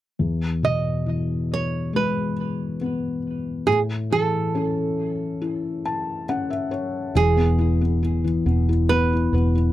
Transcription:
0.19 E2
0.63 B2 D#5
1.06 E3
1.54 C#5
1.93 G#3 B4
2.81 B3
3.67 A2 G#4
4.11 E3 A4
4.55 C#4
5.42 E4
5.72 G#4
5.86 A5
6.29 C#4 F#5
6.50 E5
6.71 C#5
7.15 E1 E3 G#4
7.37 B3
7.58 E4
7.81 B3
8.03 E4
8.24 E3
8.46 E1 B3
8.69 E4
8.89 B3 B4
9.13 E4
9.33 E1 B3
9.55 E4

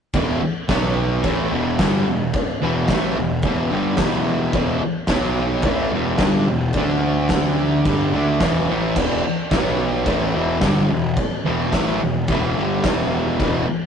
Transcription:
0.14 E1 E2 B2 E3, kick, crash
0.42 muted distorted electric guitar stroke, muted picked electric bass stroke
0.69 B1 B2 F#3 B3, kick, snare, crash
1.23 A1 A2 E3 A3, kick, crash
1.52 E1 E2 B2 E3
1.79 G1 G2 D3 G3, kick, snare, crash
2.08 E1 E2 B2
2.33 kick, crash
2.62 E1 E2 B2 E3
2.88 A1 A2 E3 A3, kick, snare, crash
3.18 E1 E2 B2
3.42 E1 E2 B2, kick, crash
3.46 E3
3.71 G1 G2 D3 G3
3.97 E1 E2 B2 E3, kick, snare, crash
4.53 E1 E2 B2 E3, kick, crash
4.82 muted picked electric bass stroke, muted distorted electric guitar stroke
5.07 B1 B2 F#3, kick, snare, crash
5.11 B3
5.62 A1 A2 E3 A3, kick, crash
5.92 E1 E2 B2 E3
6.18 G1 G2 D3 G3, kick, snare, crash
6.48 E1 E2 B2
6.73 D2 D3, kick, crash
6.78 A3 D4
7.29 kick, snare, crash
7.85 G1 G2 D3 G3, kick, crash
8.13 D2 D3 A3 D4
8.40 E1 E2 B2 E3, kick, snare, crash
8.69 A1 A2 E3 A3
8.96 E1 E2 B2 E3, kick, crash
9.23 muted distorted electric guitar stroke, muted picked electric bass stroke
9.51 B1 B2 F#3 B3, kick, snare, crash
10.06 A1 A2 E3 A3, kick, crash
10.34 E1 E2 B2 E3
10.60 G1 G2 D3 G3, kick, snare, crash
10.90 E1 E2 B2
11.16 kick, crash
11.45 E1 E2 B2 E3
11.73 A1 A2 E3 A3, kick, snare, crash
12.01 E1 E2 B2
12.28 E1 E2 B2, kick, crash
12.32 E3
12.56 G1 G2 D3 G3
12.84 E1 E2 B2 E3, kick, snare, crash
13.38 E1 E2 B2 E3, kick, crash
13.67 muted distorted electric guitar stroke, muted picked electric bass stroke

